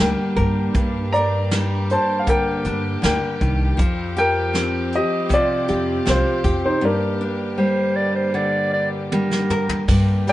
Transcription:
Already playing: G2 D3 G3 A#3 D4 G4 A#4 G5
0.00 D2 A#4
0.36 G2 A#4, kick, closed hi-hat
0.74 G2, kick, closed hi-hat
1.12 A#4 D5 A#5, closed hi-hat
1.51 G3, snare, closed hi-hat
1.90 C5 A5, closed hi-hat
2.19 F5
2.27 D3 A#4 G5, kick, closed hi-hat
2.64 G2 D4, closed hi-hat
3.02 D2 D3 A#4 G5, snare, closed hi-hat
3.41 C2 D#3, kick, closed hi-hat
3.77 F2 F3 C4, kick, closed hi-hat
4.17 G4 A#4 G5, closed hi-hat
4.53 C4, snare, closed hi-hat
4.92 D#5, closed hi-hat
4.97 G4
5.29 C3, kick, closed hi-hat
5.34 F4 D5
5.68 F2 G4, closed hi-hat
6.06 C2 C4 C5, snare, closed hi-hat
6.11 F4
6.44 F2 G4, kick, closed hi-hat
6.66 D#4 C5
6.81 G2 D3 A#3
6.85 D4 A#4
7.21 D4
7.58 G3 C5
7.96 D5
8.16 C5
8.34 D3 D5
8.73 D5
9.12 G3 A#4, high tom
9.31 snare
9.50 A#4, mid tom
9.69 floor tom
9.88 G2 D3 G3 A#3 G4, kick, crash
10.27 G3 D5 G5, ride

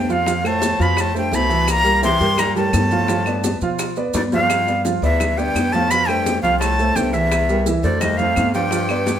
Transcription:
Already playing: F2 G2 G5
0.09 F2 F3 F4 F5, high bongo, maracas
0.27 F3 F4 F5, high bongo, high conga, maracas
0.44 A2 A3 A4 C5 A5, high bongo, high conga, claves, maracas
0.62 high bongo, high conga, maracas
0.79 F2 B2 F3 F4 F5 B5, high conga, maracas
0.97 A2 A5, high bongo, high conga, claves, maracas
1.14 G2 A3 A4 C5, high bongo, high conga, maracas
1.18 G5
1.32 C2 B2 A3 A4 C5 B5, high bongo, low bongo, high conga, maracas
1.49 E3 E4 E5, high bongo, maracas
1.68 A#2 A#5, high bongo, high conga, claves, maracas
1.84 G3 G4 A#4, high bongo, high conga, maracas
2.03 C3 E3 E4 E5 C6, high bongo, high conga, maracas
2.20 G2 G3 G4 A#4, high conga, maracas
2.38 A#2 A#5, high bongo, high conga, low conga, claves, maracas
2.56 A2 G3 G4 A#4 A5, high bongo, high conga, low conga, maracas
2.73 G2, high bongo, low bongo, high conga, claves, maracas
2.91 F3 F4 F5, high bongo, high conga, maracas
3.08 F3 F4 F5, high bongo, high conga, maracas
3.26 B3 B4 D5, high bongo, high conga, claves, maracas
3.44 high bongo, high conga, maracas
3.61 B2 F3 F4 F5, high conga, maracas
3.79 high bongo, high conga, claves, maracas
3.96 B3 B4 D5, high bongo, high conga, maracas
4.14 D2 G2 B3 B4 D5, high bongo, low bongo, high conga, maracas
4.32 F2 F3 F4 F5, high bongo, high conga, maracas
4.50 high bongo, claves, maracas
4.67 B3 B4 D5, high bongo, high conga, maracas
4.85 F3 F4 F5, high bongo, high conga, maracas
5.02 D2 E2 B3 B4 D5 E5, high conga, maracas
5.20 high bongo, high conga, low conga, claves, maracas
5.37 G2 B3 B4 D5 G5, high bongo, high conga, maracas
5.55 F2, high bongo, low bongo, high conga, claves, maracas
5.71 A2 F3 F4 F5 A5, high bongo, high conga, maracas
5.89 B2 F3 F4 F5 B5, high bongo, high conga, maracas
6.06 G2 A3 A4 C5 G5, high bongo, high conga, claves, maracas
6.26 high bongo, high conga, maracas
6.42 C2 F2 F3 F4 F5, maracas
6.59 A2 A5, high bongo, high conga, claves, maracas
6.79 A3 A4 C5, high bongo, high conga, maracas
6.94 C2 G2 A3 A4 C5 G5, high bongo, low bongo, high conga, maracas
7.12 E2 E3 E4 E5, high bongo, maracas
7.31 high bongo, high conga, claves, maracas
7.49 G3 G4 A#4, high bongo, high conga, maracas
7.66 E3 E4 E5, high bongo, high conga, maracas
7.83 D2 F2 A3 A4 C5 D5, high conga, maracas
8.00 D#2 D#5, high bongo, high conga, low conga, claves, maracas
8.17 F2 A3 A4 C5 F5, high bongo, high conga, low conga, maracas
8.36 G2, high bongo, low bongo, high conga, claves, maracas
8.54 G2 F3 F4 F5 G5, high bongo, maracas
8.71 F3 F4 F5, high bongo, high conga, maracas
8.89 B3 B4 D5, high bongo, high conga, claves, maracas
9.06 high bongo, high conga, maracas

